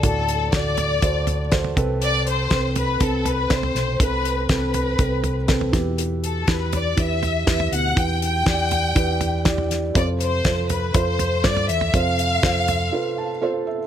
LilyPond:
<<
  \new Staff \with { instrumentName = "Violin section" } { \time 4/4 \key e \minor \tempo 4 = 121 a'4 d''2 r4 | d''8 c''4 b'8 a'8 b'8 c''4 | b'4 b'2 r4 | r8 a'8 b'8 d''8 e''4 e''8 fis''8 |
g''8 g''2. r8 | d''8 c''4 b'8 c''4 d''8 e''8 | f''2. r4 | }
  \new Staff \with { instrumentName = "Felt piano" } { \time 4/4 \key e \minor <fis' a' d''>8. r16 <fis' a' d''>8. r16 <fis' a' c''>8. r16 <fis' a' c''>8 <c' a' b'>8~ | <c' a' b'>8 r8 <c' a' b'>8. r16 <c' a' b'>8. r16 <c' a' c''>8. r16 | <c' a' b'>8. r16 <c' a' b'>8. r16 <c' a' b'>8. r16 <c' a' b'>8 <e' g' b'>8~ | <e' g' b'>8 r8 <e' g' b'>8. r16 <e' g' b'>8. r16 <e' g' b'>8. r16 |
<e' g' b'>8. r16 <e' g' d''>8. r16 <e' g' b'>8. r16 <e' g' d''>8. r16 | <f' a' c''>8. r16 <f' a' c''>8. r16 <f' a' c''>8. r16 <f' a' c''>8. r16 | <f' a' c''>8. r16 <f' a' c''>8. r16 <f' a' b'>8. r16 <f' a' c''>8. r16 | }
  \new Staff \with { instrumentName = "Felt piano" } { \clef bass \time 4/4 \key e \minor a,4. r2 c8~ | c4 r2 r8 c8~ | c4 r2 r8 b,8~ | b,4 r2 r8 b,8~ |
b,4 r2. | c4. r2 r8 | c4. r4 a''8 f''8 e''8 | }
  \new Staff \with { instrumentName = "Fingered electric bass" } { \clef bass \time 4/4 \key e \minor d,4 d,4 d,4. c,8~ | c,4 c,4 c,4 c,8 b,,8 | c,4 c,4 c,4. e,8~ | e,4 e,4 e,4 e,8 d,8 |
e,4 e,4 e,2 | f,4 f,4 f,4 g,8 e,8 | f,4 f,4 r2 | }
  \new DrumStaff \with { instrumentName = "Drums" } \drummode { \time 4/4 <hh bd>8 hh8 <hh bd sn>8 <hh tomfh>8 <hh bd>8 <hh tomfh>8 <hh bd sn>16 tomfh16 <hh bd>8 | hh8 hh8 <hh bd sn>8 <hh tomfh>8 <hh bd>8 <hh tomfh>8 <hh bd sn>16 tomfh16 <hh sn>8 | <hh bd>8 hh8 <hh bd sn>8 <hh tomfh>8 <hh bd>8 <hh tomfh>8 <hh bd sn>16 tomfh16 <hh bd sn>8 | hh8 hh8 <hh bd sn>8 <hh tomfh>8 <hh bd>8 <hh tomfh>8 <hh bd sn>16 tomfh16 hh8 |
<hh bd>8 hh8 <hh bd sn>8 <hh tomfh>8 <hh bd>8 <hh tomfh>8 <hh bd sn>16 tomfh16 <hh sn>8 | <hh bd>8 hh8 <hh bd sn>8 <hh tomfh>8 <hh bd>8 <hh tomfh>8 <hh bd sn>16 tomfh16 hh16 tomfh16 | <hh bd>8 hh8 <hh bd sn>8 <hh tomfh>8 r4 r4 | }
>>